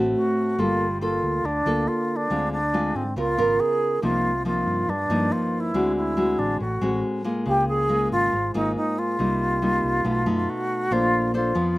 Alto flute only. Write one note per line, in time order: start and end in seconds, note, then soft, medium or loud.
0.16 0.61 F#4 medium
0.59 1.01 F4 medium
1.01 1.47 F4 medium
1.45 1.89 D4 medium
1.88 2.18 F4 medium
2.16 2.52 D4 medium
2.52 2.97 D4 medium
2.96 3.17 C4 medium
3.18 3.61 F4 medium
3.60 4.03 G#4 medium
4.03 4.43 F4 medium
4.47 4.91 F4 medium
4.89 5.34 D4 medium
5.32 5.62 F4 medium
5.60 5.95 E4 medium
5.96 6.40 E4 medium
6.39 6.60 D4 medium
6.61 7.00 F#4 medium
7.47 7.67 G4 medium
7.69 8.08 G#4 medium
8.12 8.51 F4 loud
8.56 8.75 D#4 medium
8.76 9.00 D#4 medium
8.99 10.51 F4 medium
10.50 10.94 F#4 medium
10.92 11.34 F4 loud
11.36 11.78 F4 medium